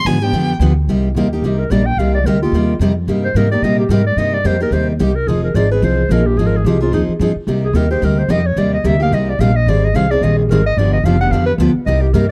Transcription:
0.05 upright bass G#2, steel-string acoustic guitar D3 F3 B3 D4 G4, violin G#5
0.22 steel-string acoustic guitar B3 D4 G4, violin G5
0.32 upright bass F2, steel-string acoustic guitar D3 F3 B3 D4 G4
0.59 upright bass D2, steel-string acoustic guitar D3 F3 B3 D4 G4
0.88 upright bass C2, steel-string acoustic guitar C3 G3 A#3 D#4 G4
1.15 upright bass D#2, steel-string acoustic guitar C3 G3 A#3 D#4 G4
1.33 steel-string acoustic guitar A#3 D#4 G4
1.42 upright bass C2, steel-string acoustic guitar C3 G3 A#3 D#4 G4, clarinet G4
1.59 clarinet A#4
1.70 upright bass A#1, steel-string acoustic guitar C3 G3 A#3 D#4 G4, clarinet D5
1.86 clarinet G5
1.97 upright bass C2, steel-string acoustic guitar C3 G3 A#3 D#4 G4, clarinet F5
2.14 clarinet D5
2.24 upright bass D2, steel-string acoustic guitar C3 G3 A#3 D#4 G4, clarinet A#4
2.42 steel-string acoustic guitar A#3 D#4 G4, clarinet F4
2.52 upright bass D#2, steel-string acoustic guitar C3 G3 A#3 D#4 G4
2.79 upright bass F2, steel-string acoustic guitar C3 G3 A#3 D#4 G4
3.07 upright bass G2, steel-string acoustic guitar C3 G3 A#3 D#4 G4
3.24 clarinet C5
3.34 upright bass G#2, steel-string acoustic guitar C3 G3 A#3 D#4 G4, clarinet A#4
3.51 steel-string acoustic guitar A#3 D#4 G4, clarinet D5
3.62 upright bass A#2, steel-string acoustic guitar C3 G3 A#3 D#4 G4, clarinet D#5
3.79 clarinet G4
3.89 upright bass G#2, steel-string acoustic guitar C3 G3 A#3 D#4 G4, clarinet A#4
4.06 clarinet D5
4.16 upright bass G2, steel-string acoustic guitar C3 G3 A#3 D#4 G4, clarinet D#5
4.34 clarinet D5
4.44 upright bass F2, steel-string acoustic guitar C3 G3 A#3 D#4 G4, clarinet C5
4.60 steel-string acoustic guitar A#3 D#4 G4, clarinet A#4
4.71 upright bass D#2, steel-string acoustic guitar C3 G3 A#3 D#4 G4, clarinet C5
4.90 clarinet D#4
4.99 upright bass C2, steel-string acoustic guitar C3 G3 A#3 D#4 G4, clarinet G4
5.15 clarinet A#4
5.27 upright bass F1, steel-string acoustic guitar F3 C4 D#4 G#4, clarinet G#4
5.44 clarinet A#4
5.54 upright bass G#1, steel-string acoustic guitar F3 C4 D#4 G#4, clarinet D5
5.71 steel-string acoustic guitar C4 D#4 G#4, clarinet B4
5.82 upright bass C2, steel-string acoustic guitar F3 C4 D#4 G#4, clarinet C5
6.09 upright bass A#1, steel-string acoustic guitar F3 C4 D#4 G#4, clarinet A#4
6.26 clarinet G4
6.37 upright bass G#1, steel-string acoustic guitar F3 C4 D#4 G#4, clarinet G#4
6.47 clarinet A#4
6.57 clarinet G#4
6.65 upright bass C2, steel-string acoustic guitar F3 C4 D#4 G#4, clarinet G4
6.81 steel-string acoustic guitar C4 D#4 G#4, clarinet F4
6.92 upright bass D#2, steel-string acoustic guitar F3 C4 D#4 G#4, clarinet D#4
7.08 muted upright bass stroke
7.19 upright bass G2, steel-string acoustic guitar F3 C4 D#4 G#4
7.35 muted upright bass stroke
7.47 upright bass C2, steel-string acoustic guitar C3 G3 A#3 D#4 G4
7.64 clarinet G#4
7.73 upright bass D#2, steel-string acoustic guitar C3 G3 A#3 D#4 G4, clarinet A#4
7.91 steel-string acoustic guitar A#3 D#4 G4, clarinet C5
8.02 upright bass D2, steel-string acoustic guitar C3 G3 A#3 D#4 G4, clarinet A#4
8.19 clarinet C5
8.28 upright bass F2, steel-string acoustic guitar C3 G3 A#3 D#4 G4, clarinet D#5
8.46 clarinet C#5
8.56 upright bass D#2, steel-string acoustic guitar C3 G3 A#3 D#4 G4, clarinet D5
8.74 clarinet D#5
8.84 upright bass D2, steel-string acoustic guitar C3 G3 A#3 D#4 G4, clarinet E5
9.00 steel-string acoustic guitar A#3 D#4 G4, clarinet F5
9.11 upright bass C2, steel-string acoustic guitar C3 G3 A#3 D#4 G4, clarinet D#5
9.29 clarinet D5
9.39 upright bass A#1, steel-string acoustic guitar C3 G3 A#3 D#4 G4, clarinet F5
9.56 clarinet D#5
9.66 upright bass G#1, steel-string acoustic guitar D#3 G3 C4 D#4 G#4, clarinet D5
9.84 clarinet D#5
9.94 upright bass C2, steel-string acoustic guitar D#3 G3 C4 D#4 G#4, clarinet F5
10.11 steel-string acoustic guitar C4 D#4 G#4, clarinet D5
10.21 upright bass A#1, steel-string acoustic guitar D#3 G3 C4 D#4 G#4, clarinet D#5
10.39 clarinet G4
10.49 upright bass G#1, steel-string acoustic guitar D#3 G3 C4 D#4 G#4, clarinet A#4
10.66 clarinet D#5
10.77 upright bass G1, steel-string acoustic guitar D3 F3 B3 D4 G4, clarinet D5
10.93 clarinet D#5
11.04 upright bass F1, steel-string acoustic guitar D3 F3 B3 D4 G4, clarinet F5
11.21 steel-string acoustic guitar B3 D4 G4, clarinet F#5
11.31 upright bass F2, steel-string acoustic guitar D3 F3 B3 D4 G4, clarinet F5
11.46 clarinet B4
11.58 upright bass D2, steel-string acoustic guitar D3 F3 B3 D4 G4
11.75 muted upright bass stroke
11.86 upright bass C2, steel-string acoustic guitar C3 G3 A#3 D#4 G4, clarinet D#5
12.01 clarinet G4
12.13 upright bass G2, steel-string acoustic guitar C3 G3 A#3 D#4 G4, clarinet A#4

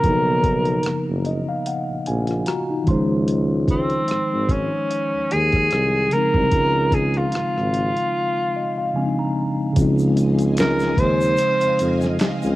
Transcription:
Already playing: tenor saxophone A#4
0.00 tuba B1, tine electric piano C#3 F3, kick, closed hi-hat
0.05 tine electric piano A#3 B3
0.09 tine electric piano D#4
0.43 kick, closed hi-hat
0.65 closed hi-hat
0.83 tuba F#1, cross-stick, closed hi-hat
1.09 tuba F#1
1.25 tine electric piano D#5, closed hi-hat
1.49 tine electric piano F5
1.66 tine electric piano F#5, closed hi-hat
1.90 tuba A#1
2.06 tuba A#1, tine electric piano G#5, closed hi-hat
2.27 tine electric piano F4, cross-stick, closed hi-hat
2.46 tine electric piano F#4 A#5, cross-stick, closed hi-hat
2.70 tine electric piano D#4
2.84 tine electric piano D#3 F3, kick, closed hi-hat
2.88 tuba C#2, tine electric piano G#3 C5 C6
2.93 tine electric piano D#4
3.28 closed hi-hat
3.68 tenor saxophone C4, kick, closed hi-hat
3.90 closed hi-hat
4.08 tuba G#1, cross-stick, closed hi-hat
4.33 tuba G#1
4.49 tenor saxophone C#4, kick, closed hi-hat
4.91 closed hi-hat
5.14 tuba D#2
5.31 tuba D#2, tenor saxophone G#4, closed hi-hat
5.52 kick, cross-stick, closed hi-hat
5.70 tuba C2, cross-stick, closed hi-hat
6.08 tine electric piano C#3 F3, closed hi-hat
6.13 tine electric piano G#3 C4, tenor saxophone A#4
6.17 tine electric piano D#4
6.34 tuba C2, kick
6.52 tuba C#2, kick, closed hi-hat
6.92 tenor saxophone G#4, kick, closed hi-hat
7.14 tenor saxophone F4, closed hi-hat
7.32 tuba G#1, cross-stick, closed hi-hat
7.57 tuba G#1, cross-stick
7.74 closed hi-hat
7.97 closed hi-hat
8.56 tine electric piano D#5
8.78 tine electric piano F5
8.94 tine electric piano C#3 F3 G#3 C4 G#5
8.98 tine electric piano D4
9.05 tine electric piano D#4
9.19 tine electric piano A#5
9.73 tuba C#2, tine electric piano C#3 F3, string machine C4 D#5 F5 G#5, kick, closed hi-hat, shaker
9.77 tine electric piano G#3 C4
9.82 tine electric piano D#4
9.98 shaker
10.17 closed hi-hat, shaker
10.38 closed hi-hat, shaker
10.57 tenor saxophone A#4, finger snap, snare, closed hi-hat, shaker
10.61 clap
10.79 snare, shaker
10.97 tuba D#2, tenor saxophone C5, kick, closed hi-hat
11.21 shaker
11.37 closed hi-hat, shaker
11.61 tuba F2, closed hi-hat, shaker
11.79 tuba F2, closed hi-hat, shaker
12.01 snare, shaker
12.19 tuba C#2, finger snap, snare, clap, closed hi-hat, shaker
12.42 tuba C#2, shaker

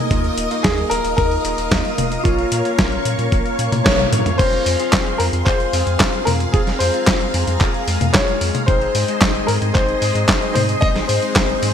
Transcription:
Already playing: string machine A#4 D#5 D#6
0.11 analog synth bass D#2, analog polysynth A#3 D#4 F4 D#5, string machine F5, kick, closed hi-hat
0.24 closed hi-hat
0.37 analog synth bass D#1, closed hi-hat
0.51 analog polysynth A#3 D#4 F4 D#5, closed hi-hat
0.63 analog synth bass D#2, grand piano G#4, kick, snare, closed hi-hat
0.78 closed hi-hat
0.90 analog synth bass D#1, grand piano A#4, closed hi-hat
1.04 analog synth bass D#1, closed hi-hat
1.17 analog synth bass D#2, grand piano A#4, kick, closed hi-hat
1.31 closed hi-hat
1.45 analog synth bass D#1, analog polysynth A#3 D#4 F4 D#5, closed hi-hat
1.58 analog synth bass D#1, closed hi-hat
1.72 analog synth bass D#2, kick, snare, closed hi-hat
1.85 closed hi-hat
1.98 analog synth bass D#1, closed hi-hat, high tom
2.12 closed hi-hat
2.24 analog synth bass A#1, analog polysynth A#3 C#4 F4 C#5, grand piano F4, string machine C#5 C#6, kick, closed hi-hat
2.38 closed hi-hat
2.52 analog synth bass A#2, closed hi-hat
2.65 analog polysynth A#3 C#4 F4 C#5, closed hi-hat
2.79 analog synth bass A#1, kick, snare, closed hi-hat
2.92 closed hi-hat
3.05 analog synth bass A#2, closed hi-hat
3.19 analog synth bass A#2, closed hi-hat
3.32 analog synth bass A#1, kick, closed hi-hat
3.46 closed hi-hat
3.59 analog synth bass A#2, analog polysynth A#3 C#4 F4 C#5, closed hi-hat
3.72 analog synth bass A#2, closed hi-hat, high tom
3.84 analog synth bass A#1, grand piano C#5, kick, snare, closed hi-hat
3.99 closed hi-hat, high tom
4.12 analog synth bass A#2, closed hi-hat, mid tom
4.26 closed hi-hat, mid tom
4.38 analog synth bass F1, analog polysynth C4 F4 G#4 F5, string machine G#4 F5 C6, grand piano C5, kick, closed hi-hat, crash
4.53 closed hi-hat
4.66 analog synth bass F2, open hi-hat
4.80 analog polysynth C4 F4 G#4 F5, closed hi-hat
4.93 analog synth bass F1, kick, snare, clap, closed hi-hat
5.06 closed hi-hat
5.18 analog synth bass F2, grand piano A#4, open hi-hat
5.33 analog synth bass F2, closed hi-hat
5.45 analog synth bass F1, grand piano C5, kick, clap, closed hi-hat
5.60 closed hi-hat
5.73 analog synth bass F2, analog polysynth C4 F4 G#4 F5, open hi-hat
5.87 analog synth bass F2, closed hi-hat
6.00 analog synth bass F1, kick, snare, clap, closed hi-hat
6.14 closed hi-hat
6.25 analog synth bass F2, grand piano A#4, open hi-hat, high tom
6.40 closed hi-hat
6.52 analog synth bass F1, analog polysynth C4 F4 G#4 F5, grand piano G#4, string machine A#5, kick, closed hi-hat
6.67 snare, closed hi-hat
6.79 analog synth bass F2, grand piano C5, open hi-hat
6.94 analog polysynth C4 F4 G#4 F5, closed hi-hat
7.07 analog synth bass F1, kick, snare, clap, closed hi-hat
7.21 closed hi-hat
7.34 analog synth bass F2, open hi-hat
7.47 analog synth bass F2, closed hi-hat
7.61 analog synth bass F1, kick, clap, closed hi-hat
7.74 closed hi-hat
7.88 analog synth bass F2, analog polysynth G#3 F4 G#4 F5, open hi-hat
8.01 analog synth bass F2, closed hi-hat, high tom
8.13 analog synth bass F1, grand piano C#5, kick, snare, clap, closed hi-hat
8.28 closed hi-hat
8.41 analog synth bass F2, open hi-hat
8.55 closed hi-hat, high tom
8.66 analog synth bass G#1, analog polysynth G#3 C4 D#4 C5, grand piano C5, string machine D#5 C6, kick, closed hi-hat
8.81 closed hi-hat
8.95 analog synth bass G#2, open hi-hat
9.08 analog polysynth G#3 C4 D#4 C5, closed hi-hat
9.22 analog synth bass G#1, kick, snare, clap, closed hi-hat
9.35 closed hi-hat
9.47 analog synth bass G#2, grand piano A#4, open hi-hat
9.62 analog synth bass G#2, closed hi-hat
9.74 analog synth bass G#1, grand piano C5, kick, clap, closed hi-hat
9.89 closed hi-hat
10.02 analog synth bass G#2, analog polysynth G#3 C4 D#4 C5, open hi-hat
10.15 analog synth bass G#2, closed hi-hat
10.29 analog synth bass G#1, kick, snare, clap, closed hi-hat
10.42 closed hi-hat
10.54 analog synth bass G#2, grand piano C5, open hi-hat, high tom
10.69 closed hi-hat
10.81 analog synth bass G#1, analog polysynth G#3 C4 D#4 C5, grand piano D#5, kick, closed hi-hat
10.96 snare, closed hi-hat
11.08 analog synth bass G#2, grand piano C5, open hi-hat
11.22 analog polysynth G#3 C4 D#4 C5, closed hi-hat
11.36 analog synth bass G#1, kick, snare, clap, closed hi-hat
11.49 closed hi-hat
11.63 analog synth bass G#2, open hi-hat

